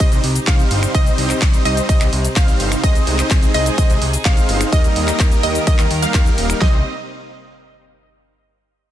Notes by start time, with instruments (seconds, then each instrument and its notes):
Already playing: string section C3 C4 D#4 G4
0.00 analog synth bass C2, supersaw synth G3 C4 D#4 C5 D#5, synth pluck D#5, kick, closed hi-hat, ride, shaker
0.12 analog synth bass C2, closed hi-hat, shaker
0.24 analog synth bass C2, open hi-hat
0.35 closed hi-hat, shaker
0.47 analog synth bass C2, supersaw synth G3 C4 D#4 C5 F5, synth pluck F5, kick, clap, closed hi-hat, ride, shaker
0.59 closed hi-hat, shaker
0.71 analog synth bass G1, open hi-hat
0.83 finger snap, closed hi-hat, shaker
0.95 analog synth bass C2, supersaw synth G3 C4 D#4 C5 D#5, synth pluck D#5, kick, closed hi-hat, ride, shaker
1.06 closed hi-hat, shaker
1.18 analog synth bass C2, open hi-hat
1.30 finger snap, clap, closed hi-hat, shaker
1.42 analog synth bass C2, kick, clap, closed hi-hat, ride, shaker
1.54 closed hi-hat, shaker
1.65 analog synth bass C2, supersaw synth G3 C4 D#4 C5 D#5, synth pluck D#5, open hi-hat
1.77 closed hi-hat, shaker
1.89 analog synth bass C2, supersaw synth G3 C4 D#4 C5 D#5, synth pluck D#5, kick, closed hi-hat, ride, shaker
2.01 analog synth bass C2, finger snap, clap, closed hi-hat, shaker
2.13 analog synth bass C2, open hi-hat
2.24 closed hi-hat, shaker
2.36 analog synth bass C2, supersaw synth G3 C4 D#4 C5 F5, synth pluck F5, kick, clap, closed hi-hat, ride, shaker
2.48 closed hi-hat, shaker
2.60 analog synth bass G1, open hi-hat
2.72 finger snap, closed hi-hat, shaker
2.83 analog synth bass C2, supersaw synth G#3 C4 D#4 C5 D#5, string section D#4 G#4, synth pluck D#5, kick, closed hi-hat, ride, shaker
2.95 closed hi-hat, shaker
3.07 analog synth bass C2, open hi-hat
3.19 finger snap, clap, closed hi-hat, shaker
3.31 analog synth bass C2, kick, clap, closed hi-hat, ride, shaker
3.43 closed hi-hat, shaker
3.54 analog synth bass C2, supersaw synth G#3 C4 D#4 C5 D#5, synth pluck D#5, open hi-hat
3.66 closed hi-hat, shaker
3.78 analog synth bass C2, supersaw synth G#3 C4 D#4 C5 D#5, synth pluck D#5, kick, closed hi-hat, ride, shaker
3.90 analog synth bass C2, closed hi-hat, shaker
4.02 analog synth bass C2, open hi-hat
4.13 closed hi-hat, shaker
4.25 analog synth bass C2, supersaw synth G#3 C4 D#4 C5 F5, synth pluck F5, kick, clap, closed hi-hat, ride, shaker
4.37 closed hi-hat, shaker
4.49 analog synth bass G1, open hi-hat
4.61 finger snap, closed hi-hat, shaker
4.72 analog synth bass D#2, string section D#3 G4 A#4, supersaw synth G3 A#3 D#4 A#4 D#5, synth pluck D#5, kick, closed hi-hat, ride, shaker
4.84 closed hi-hat, shaker
4.96 analog synth bass D#2, open hi-hat
5.08 finger snap, clap, closed hi-hat, shaker
5.20 analog synth bass D#2, kick, clap, closed hi-hat, ride, shaker
5.32 closed hi-hat, shaker
5.43 analog synth bass D#2, supersaw synth G3 A#3 D#4 A#4 D#5, synth pluck D#5, open hi-hat
5.55 closed hi-hat, shaker
5.67 analog synth bass D#2, supersaw synth G3 A#3 D#4 A#4 D#5, synth pluck D#5, kick, closed hi-hat, ride, shaker
5.79 analog synth bass D#2, finger snap, clap, closed hi-hat, shaker
5.91 analog synth bass D#2, open hi-hat
6.02 supersaw synth G3 A#3 D#4 A#4 F5, synth pluck F5, closed hi-hat, shaker
6.14 analog synth bass D#2, supersaw synth G3 A#3 D#4 A#4 F5, synth pluck F5, kick, clap, closed hi-hat, ride, shaker
6.26 closed hi-hat, shaker
6.38 analog synth bass D#1, open hi-hat
6.50 finger snap, closed hi-hat, shaker
6.62 analog synth bass C2, string section C3 C4 G4 D#5, supersaw synth G3 C4 D#4 C5 D#5, synth pluck D#5, kick, snare